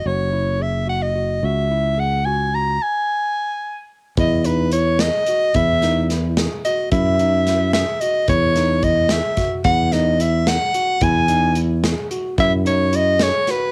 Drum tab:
HH |-----|-----|-----|xxxxx|
SD |-----|-----|-----|---o-|
BD |-----|-----|-----|o----|

HH |xxxxx|xxxxx|xxxxx|xxxxx|
SD |-ooo-|--oo-|-o-oo|-o-o-|
BD |o----|o----|o-o-o|o----|

HH |xxxxx|xxxxx|
SD |---o-|---oo|
BD |o----|o----|